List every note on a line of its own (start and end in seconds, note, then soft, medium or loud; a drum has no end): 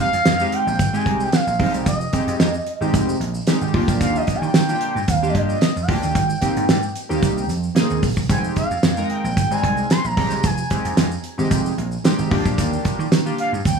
0.00 0.55 F5 loud
0.00 shaker medium
0.13 0.22 F2 medium
0.13 closed hi-hat medium
0.13 shaker soft
0.26 0.44 F2 loud
0.26 snare loud
0.26 closed hi-hat loud
0.26 shaker medium
0.39 0.69 G#3 medium
0.39 0.69 C4 medium
0.39 0.69 D#4 medium
0.39 0.69 G4 medium
0.39 shaker medium
0.52 0.97 G5 loud
0.52 closed hi-hat medium
0.67 0.81 A#1 medium
0.67 shaker medium
0.79 0.98 G#1 loud
0.79 kick loud
0.79 closed hi-hat medium
0.79 shaker medium
0.93 1.29 G#3 medium
0.93 1.29 C4 medium
0.93 1.29 D#4 medium
0.93 1.29 G4 medium
0.93 1.17 G#5 loud
0.93 shaker medium
1.06 1.25 C2 loud
1.06 kick loud
1.06 closed hi-hat medium
1.17 1.24 G#5 medium
1.17 shaker medium
1.22 1.36 G5 loud
1.32 1.87 F5 loud
1.32 snare loud
1.32 closed hi-hat medium
1.32 shaker medium
1.47 1.56 A#1 loud
1.47 shaker medium
1.59 1.70 A#1 medium
1.59 1.88 G#3 medium
1.59 1.88 C4 medium
1.59 1.88 D#4 medium
1.59 1.89 G4 medium
1.59 kick loud
1.59 open hi-hat medium
1.74 1.83 C2 medium
1.74 closed hi-hat medium
1.74 shaker medium
1.86 2.05 F1 loud
1.86 2.90 D#5 medium
1.86 kick loud
1.86 closed hi-hat loud
1.86 shaker medium
2.01 shaker medium
2.13 2.50 G#3 medium
2.13 2.50 C4 medium
2.13 2.50 D#4 medium
2.13 2.50 G4 medium
2.13 kick loud
2.13 closed hi-hat medium
2.13 shaker medium
2.27 2.36 F2 loud
2.27 closed hi-hat medium
2.27 shaker soft
2.40 2.58 F2 loud
2.40 snare loud
2.40 closed hi-hat loud
2.40 shaker medium
2.54 shaker soft
2.67 closed hi-hat medium
2.81 2.90 G#1 loud
2.81 3.16 G#3 loud
2.81 3.16 C4 loud
2.81 3.17 D#4 medium
2.81 3.17 G4 loud
2.81 shaker medium
2.94 3.12 F1 loud
2.94 kick loud
2.94 closed hi-hat medium
2.94 shaker medium
3.09 shaker medium
3.20 3.39 A#1 loud
3.20 closed hi-hat medium
3.34 shaker medium
3.47 3.74 G#3 loud
3.47 3.74 C4 medium
3.47 3.74 D#4 medium
3.47 3.73 G4 loud
3.47 snare loud
3.47 closed hi-hat loud
3.47 shaker medium
3.61 3.70 G#1 medium
3.61 shaker medium
3.74 3.84 D#2 loud
3.74 4.49 A#3 loud
3.74 4.49 D4 medium
3.74 4.49 F4 loud
3.74 4.50 G4 loud
3.74 kick loud
3.74 open hi-hat medium
3.88 3.97 A#1 medium
3.88 kick loud
3.88 closed hi-hat medium
3.88 shaker medium
4.01 4.19 D#2 loud
4.01 4.18 F5 loud
4.01 kick loud
4.01 closed hi-hat loud
4.01 shaker medium
4.15 4.37 D#5 loud
4.15 shaker medium
4.27 kick loud
4.27 closed hi-hat medium
4.27 shaker medium
4.35 4.45 G#5 medium
4.42 4.50 D#3 medium
4.42 5.11 G5 loud
4.42 shaker soft
4.54 4.73 D#3 loud
4.54 snare loud
4.54 closed hi-hat loud
4.54 shaker medium
4.68 4.97 A#3 medium
4.68 4.97 D4 medium
4.68 4.98 F4 medium
4.68 4.98 G4 medium
4.68 shaker medium
4.81 closed hi-hat medium
4.95 5.04 G2 loud
4.95 shaker medium
5.08 5.35 D#2 loud
5.08 5.30 F5 loud
5.08 kick loud
5.08 closed hi-hat loud
5.08 shaker medium
5.22 5.58 A#3 medium
5.22 5.58 D4 medium
5.22 5.58 F4 medium
5.22 5.58 G4 medium
5.22 shaker medium
5.29 5.37 D5 medium
5.35 5.53 G2 loud
5.35 5.84 D#5 loud
5.35 kick loud
5.35 closed hi-hat medium
5.49 shaker medium
5.61 snare loud
5.61 closed hi-hat medium
5.61 shaker medium
5.76 5.85 F2 medium
5.76 shaker medium
5.83 5.91 F#5 medium
5.88 5.98 D2 medium
5.88 6.15 A#3 medium
5.88 6.15 D4 medium
5.88 6.15 F4 medium
5.88 6.15 G4 medium
5.88 6.96 G5 loud
5.88 kick loud
5.88 open hi-hat medium
6.03 6.12 D#2 medium
6.03 closed hi-hat medium
6.03 shaker medium
6.15 6.34 G#1 loud
6.15 kick loud
6.15 closed hi-hat loud
6.15 shaker medium
6.30 shaker medium
6.41 6.78 A#3 medium
6.41 6.78 C4 medium
6.41 6.79 D#4 medium
6.41 6.79 G4 medium
6.41 kick medium
6.41 closed hi-hat medium
6.41 shaker medium
6.56 6.65 G#2 loud
6.56 closed hi-hat medium
6.56 shaker soft
6.69 6.88 G#2 loud
6.69 snare loud
6.69 closed hi-hat medium
6.69 shaker medium
6.83 shaker medium
6.96 closed hi-hat medium
6.96 shaker medium
7.09 7.19 D#2 medium
7.09 7.45 A#3 loud
7.09 7.45 C4 medium
7.09 7.45 D#4 medium
7.09 7.45 G4 loud
7.09 shaker medium
7.22 7.50 C2 loud
7.22 kick loud
7.22 closed hi-hat medium
7.22 shaker medium
7.38 shaker medium
7.49 7.68 F2 medium
7.49 closed hi-hat medium
7.49 shaker medium
7.63 shaker medium
7.75 8.04 A#3 medium
7.75 8.04 C4 medium
7.75 8.05 D#4 medium
7.75 8.05 G#4 loud
7.75 snare loud
7.75 closed hi-hat loud
7.75 shaker medium
7.90 7.99 D#2 loud
7.90 shaker medium
8.03 8.13 A#1 medium
8.03 kick loud
8.03 open hi-hat medium
8.03 shaker medium
8.17 8.26 C2 medium
8.17 kick loud
8.17 shaker medium
8.29 8.48 F1 loud
8.29 8.66 G#3 medium
8.29 8.66 C4 medium
8.29 8.66 D#4 medium
8.29 8.66 G4 medium
8.29 8.42 G#5 medium
8.29 kick loud
8.29 closed hi-hat loud
8.29 shaker medium
8.44 shaker medium
8.56 9.07 F5 medium
8.56 kick medium
8.56 closed hi-hat medium
8.56 shaker medium
8.71 8.79 F2 medium
8.71 shaker soft
8.83 9.02 F2 loud
8.83 snare loud
8.83 closed hi-hat loud
8.83 shaker medium
8.97 9.26 G#3 medium
8.97 9.26 C4 medium
8.97 9.26 D#4 medium
8.97 9.26 A#4 medium
8.97 shaker medium
9.10 9.53 G5 loud
9.10 closed hi-hat medium
9.24 9.38 A#1 medium
9.24 shaker medium
9.37 9.55 G#1 loud
9.37 kick loud
9.37 closed hi-hat loud
9.37 shaker medium
9.51 9.87 G3 medium
9.51 9.86 G#3 medium
9.51 9.86 C4 medium
9.51 9.86 D#4 medium
9.51 9.92 G#5 loud
9.51 shaker medium
9.64 9.82 C2 loud
9.64 kick loud
9.64 closed hi-hat medium
9.77 shaker medium
9.90 10.07 C6 loud
9.90 snare loud
9.90 closed hi-hat medium
9.90 shaker medium
10.04 10.13 A#1 loud
10.04 10.46 A#5 loud
10.04 shaker medium
10.17 10.27 A#1 loud
10.17 10.46 G#3 medium
10.17 10.46 C4 medium
10.17 10.46 D#4 medium
10.17 10.46 G4 medium
10.17 kick loud
10.17 open hi-hat medium
10.31 10.40 C2 medium
10.31 closed hi-hat medium
10.31 shaker medium
10.43 10.62 F1 loud
10.43 10.98 G#5 loud
10.43 kick loud
10.43 closed hi-hat loud
10.43 shaker medium
10.58 shaker medium
10.70 11.07 G#3 medium
10.70 11.07 C4 medium
10.70 11.07 D#4 medium
10.70 11.08 G4 medium
10.70 kick medium
10.70 closed hi-hat medium
10.70 shaker medium
10.85 10.93 F2 loud
10.85 closed hi-hat medium
10.85 shaker soft
10.97 11.16 F2 loud
10.97 snare loud
10.97 closed hi-hat loud
10.97 shaker medium
11.11 shaker medium
11.24 closed hi-hat medium
11.38 11.47 G#1 loud
11.38 11.73 G#3 loud
11.38 11.73 C4 medium
11.38 11.74 D#4 medium
11.38 11.74 G4 loud
11.38 shaker medium
11.51 11.70 F1 loud
11.51 kick loud
11.51 closed hi-hat loud
11.51 shaker medium
11.66 shaker medium
11.78 11.96 A#1 loud
11.78 closed hi-hat medium
11.92 shaker soft
12.04 12.31 G#3 loud
12.04 12.31 C4 medium
12.04 12.31 D#4 medium
12.04 12.30 G4 loud
12.04 snare loud
12.04 closed hi-hat loud
12.04 shaker medium
12.18 12.27 G#1 medium
12.18 shaker medium
12.30 12.41 D#2 loud
12.30 13.06 A#3 loud
12.30 13.06 D4 loud
12.30 13.06 F4 medium
12.30 13.07 G4 loud
12.30 kick loud
12.30 open hi-hat medium
12.45 12.54 A#1 medium
12.45 kick loud
12.45 closed hi-hat medium
12.45 shaker medium
12.58 12.77 D#2 loud
12.58 kick loud
12.58 closed hi-hat loud
12.58 shaker medium
12.73 shaker medium
12.85 kick loud
12.85 closed hi-hat medium
12.85 shaker medium
12.99 13.08 D#3 loud
12.99 shaker soft
13.12 13.30 D#3 medium
13.12 snare loud
13.12 closed hi-hat medium
13.12 shaker medium
13.25 13.54 A#3 medium
13.25 13.54 D4 medium
13.25 13.55 F4 medium
13.25 13.55 G4 medium
13.25 shaker medium
13.38 13.51 F5 loud
13.38 closed hi-hat medium
13.52 13.61 G2 medium
13.52 shaker medium
13.65 13.79 D#2 loud
13.65 13.79 G5 loud
13.65 kick loud
13.65 closed hi-hat medium
13.65 shaker medium